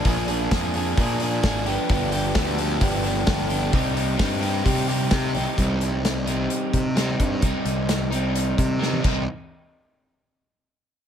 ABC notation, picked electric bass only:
X:1
M:4/4
L:1/16
Q:1/4=130
K:Cm
V:1 name="Picked electric bass" clef=bass
B,,,4 F,,4 B,,4 A,,,2 G,,, z | G,,,4 D,,4 G,,,4 G,,,4 | C,,4 G,,4 C,4 C,2 C,, z | C,,8 z2 C,4 G,,2 |
C,, z C,,8 C,4 C,,2 | z16 |]